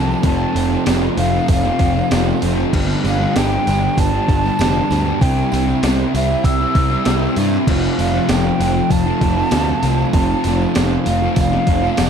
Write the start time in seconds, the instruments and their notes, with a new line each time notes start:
Already playing: picked electric bass C2, overdriven electric guitar F2 C3 F3 A3 C4, distorted electric guitar F2, flute A5
0.07 distorted electric guitar C3 F3
0.11 tambourine
0.22 picked electric bass F1, overdriven electric guitar F2 C3 F3 A3 C4, kick, open hi-hat, tambourine
0.26 flute A5
0.53 picked electric bass F1, distorted electric guitar F2, overdriven electric guitar C3 F3 A3 C4, open hi-hat
0.57 tambourine
0.70 distorted electric guitar C3, overdriven electric guitar F3 A3 C4, tambourine
0.85 picked electric bass F1, overdriven electric guitar F2 C3 F3 A3 C4, snare, open hi-hat, tambourine
1.16 picked electric bass F1, distorted electric guitar F2, overdriven electric guitar C3 F3 A3 C4, flute F5, open hi-hat, tambourine
1.31 overdriven electric guitar F3 A3 C4
1.36 distorted electric guitar C3, tambourine
1.48 picked electric bass F1, flute F5, kick, open hi-hat, tambourine
1.64 distorted electric guitar C3, overdriven electric guitar F3 A3 C4, snare
1.79 picked electric bass F1, overdriven electric guitar C3 F3 A3 C4, kick, open hi-hat, tambourine
1.96 distorted electric guitar C3, overdriven electric guitar F3 A3 C4, tambourine
2.10 picked electric bass F1, overdriven electric guitar F2 C3 F3 A3 C4, snare, open hi-hat, tambourine
2.29 tambourine
2.41 picked electric bass F1, distorted electric guitar F2, overdriven electric guitar C3 F3 A3 C4, open hi-hat
2.45 tambourine
2.56 distorted electric guitar C3 F3, tambourine
2.73 picked electric bass G1, overdriven electric guitar G2 D3 G3 B3 D4, kick, crash, tambourine
2.91 tambourine
3.03 picked electric bass G1, distorted electric guitar G2, overdriven electric guitar D3 G3 B3 D4, flute F5, open hi-hat, tambourine
3.20 distorted electric guitar D3, overdriven electric guitar G3 B3 D4, tambourine
3.36 picked electric bass G1, overdriven electric guitar G2 D3 G3 B3 D4, flute G5, snare, open hi-hat, tambourine
3.64 picked electric bass G1, distorted electric guitar G2, overdriven electric guitar D3 G3, open hi-hat, tambourine
3.69 overdriven electric guitar B3 D4
3.80 distorted electric guitar D3 G3, overdriven electric guitar B3 D4, tambourine
3.85 overdriven electric guitar G3
3.98 picked electric bass G1, flute A5, kick, open hi-hat, tambourine
4.11 distorted electric guitar D3 G3, overdriven electric guitar B3 D4
4.16 overdriven electric guitar G3
4.28 picked electric bass G1, overdriven electric guitar D3 G3 B3 D4, kick, open hi-hat, tambourine
4.43 distorted electric guitar D3, overdriven electric guitar G3 B3 D4, tambourine
4.59 picked electric bass F1, overdriven electric guitar G2 D3 G3 B3 D4, snare, open hi-hat, tambourine
4.75 tambourine
4.89 picked electric bass D2, distorted electric guitar G2, overdriven electric guitar D3 G3 B3, open hi-hat, tambourine
4.93 overdriven electric guitar D4, snare
5.04 distorted electric guitar D3 G3, tambourine
5.21 picked electric bass C2, overdriven electric guitar C3 G3 C4 E4, flute G5, kick, open hi-hat, tambourine
5.37 tambourine
5.52 picked electric bass C2, overdriven electric guitar C3 G3 C4 E4, open hi-hat, tambourine
5.68 overdriven electric guitar G3 C4 E4, tambourine
5.83 picked electric bass C2, overdriven electric guitar C3 G3 C4 E4, snare, open hi-hat, tambourine
6.00 tambourine
6.14 picked electric bass C2, overdriven electric guitar C3 G3 C4 E4, flute E5, open hi-hat, tambourine
6.27 distorted electric guitar C4, overdriven electric guitar E4
6.31 overdriven electric guitar G3 C4, tambourine
6.44 picked electric bass C2, flute E6, kick, open hi-hat, tambourine
6.61 overdriven electric guitar G3 C4 E4, tambourine
6.75 picked electric bass C2, overdriven electric guitar C3 G3 C4, kick, open hi-hat, tambourine
6.79 overdriven electric guitar E4
6.91 overdriven electric guitar G3 C4 E4, tambourine
7.05 picked electric bass C2, overdriven electric guitar C3 G3 C4 E4, snare, open hi-hat, tambourine
7.23 tambourine
7.36 picked electric bass G2, overdriven electric guitar C3 G3 C4 E4, open hi-hat, tambourine
7.52 distorted electric guitar G3 C4, tambourine
7.67 picked electric bass F1, distorted electric guitar F2 C3, overdriven electric guitar F3 A3 C4, kick, crash, tambourine
7.71 overdriven electric guitar F4
7.85 tambourine
7.98 picked electric bass F1, distorted electric guitar F2 C3, overdriven electric guitar F3 A3 C4 F4, flute F5, open hi-hat, tambourine
8.12 distorted electric guitar C3 F3, overdriven electric guitar C4 F4, tambourine
8.17 overdriven electric guitar A3
8.28 picked electric bass F1, distorted electric guitar F2 C3, overdriven electric guitar F3 A3 C4 F4, flute G5, snare, open hi-hat, tambourine
8.58 picked electric bass F1, distorted electric guitar F2 C3, overdriven electric guitar F3 A3 C4, open hi-hat, tambourine
8.63 overdriven electric guitar F4
8.74 distorted electric guitar C3 F3, overdriven electric guitar C4 F4
8.78 overdriven electric guitar A3
8.90 picked electric bass F1, flute A5, kick, open hi-hat, tambourine
9.04 distorted electric guitar C3 F3, overdriven electric guitar C4 F4
9.09 overdriven electric guitar A3
9.21 picked electric bass F1, overdriven electric guitar F3 A3 C4 F4, kick, open hi-hat, tambourine
9.36 distorted electric guitar C3 F3, overdriven electric guitar A3 C4 F4, tambourine
9.51 picked electric bass D2, distorted electric guitar F2 C3, overdriven electric guitar F3 A3, snare, open hi-hat, tambourine
9.55 overdriven electric guitar C4 F4
9.69 tambourine
9.82 picked electric bass C2, distorted electric guitar F2 C3, overdriven electric guitar F3 A3, open hi-hat, tambourine
9.86 overdriven electric guitar C4 F4
9.98 distorted electric guitar C3 F3
10.12 picked electric bass F1, distorted electric guitar F2 C3, overdriven electric guitar F3 A3 C4, flute A5, kick, open hi-hat, tambourine
10.17 overdriven electric guitar F4
10.30 tambourine
10.44 picked electric bass F1, distorted electric guitar F2 C3, overdriven electric guitar F3 A3 C4, open hi-hat, tambourine
10.48 overdriven electric guitar F4
10.59 distorted electric guitar C3 F3, overdriven electric guitar C4 F4, tambourine
10.64 overdriven electric guitar A3
10.74 picked electric bass F1, distorted electric guitar F2 C3, overdriven electric guitar F3 A3 C4, snare, open hi-hat, tambourine
10.79 overdriven electric guitar F4
11.04 picked electric bass F1, distorted electric guitar F2 C3, overdriven electric guitar F3 A3 C4, flute F5, open hi-hat, tambourine
11.09 overdriven electric guitar F4
11.20 distorted electric guitar C3 F3, overdriven electric guitar A3 C4 F4, tambourine
11.36 picked electric bass F1, flute F5, kick, open hi-hat, tambourine
11.51 distorted electric guitar C3 F3, overdriven electric guitar A3 C4 F4, snare
11.67 picked electric bass F1, overdriven electric guitar F3 A3 C4 F4, kick, open hi-hat
11.82 distorted electric guitar C3 F3, overdriven electric guitar A3 C4 F4, tambourine
11.97 picked electric bass F1, distorted electric guitar F2 C3, overdriven electric guitar F3 A3 C4 F4, snare, open hi-hat, tambourine